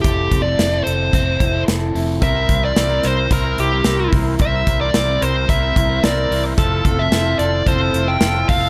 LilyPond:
<<
  \new Staff \with { instrumentName = "Lead electric guitar" } { \time 4/4 \key c \mixolydian \tempo 4 = 110 g'8. d''8. c''4. r4 | e''8. d''8. c''8 bes'8 g'4 r8 | e''8. d''8. c''8 e''4 d''8. r16 | a'8. e''8. d''8 c''8. g''8. f''8 | }
  \new Staff \with { instrumentName = "Transistor combo organ" } { \time 4/4 \key c \mixolydian r1 | <e' bes' c''>4 <e' bes' c''>4 <e' bes' c''>4 <e' bes' c''>4 | <e' bes' c''>4 <e' bes' c''>4 <e' bes' c''>4 <e' bes' c''>4 | <f' a' e''>4 <f' a' c''>4 <f' a' e''>4 <f' a' e''>4 | }
  \new Staff \with { instrumentName = "Clean electric guitar" } { \time 4/4 \key c \mixolydian <f c' e' a'>8 c'8 e'8 a'8 c'8 e'8 a'8 e'8 | <c bes'>8 c'8 e'8 bes'8 c'8 e'8 bes'8 e'8 | <c bes'>8 c'8 e'8 bes'8 c'8 e'8 bes'8 e'8 | <f a'>8 c'8 e'8 a'8 c'8 e'8 a'4 | }
  \new Staff \with { instrumentName = "Overdriven electric guitar" } { \time 4/4 \key c \mixolydian <a c' e' a'>8. <f a c' e' a'>8 <c' e' a'>8. <a c' e' a'>8. <c' e' a'>8. <f a c' e' a'>8 | <g c' e' bes'>8. <c e g c' e' bes'>8 <g c' e' bes'>8. <g c' e' bes'>8. <g c' e' bes'>8. <c e g c' e' bes'>8 | <g c' e' bes'>8. <c e g c' e' bes'>8 <g c' e' bes'>8. <g c' e' bes'>8. <g c' e' bes'>8. <c e g c' e' bes'>8 | <a c' e' a'>8. <f a c' e' a'>8 <c' e' a'>8. <a c' e' a'>8. <c' e' a'>8. <f a c' e' a'>8 | }
  \new Staff \with { instrumentName = "Fingered electric bass" } { \clef bass \time 4/4 \key c \mixolydian f,,8 f,,8 f,,8 f,,8 f,,8 f,,8 f,,8 f,,8 | c,8 c,8 c,8 c,8 c,8 c,8 c,8 c,8 | c,8 c,8 c,8 c,8 c,8 c,8 c,8 c,8 | f,,8 f,,8 f,,8 f,,8 f,,8 f,,8 f,,8 f,,8 | }
  \new DrumStaff \with { instrumentName = "Drums" } \drummode { \time 4/4 <hh bd>8 <hh bd>8 <hh sn>8 hh8 <hh bd>8 <hh bd>8 <hh sn>8 hho8 | <hh bd>8 <hh bd>8 <hh sn>8 <hh sn>8 <hh bd>8 hh8 <hh sn>8 <hho bd>8 | <hh bd>8 <hh bd>8 <hh sn>8 hh8 <hh bd>8 <hh bd>8 <hh sn>8 hho8 | <hh bd>8 <hh bd>8 <hh sn>8 hh8 <hh bd>8 hh8 <hh sn>8 <hho bd>8 | }
>>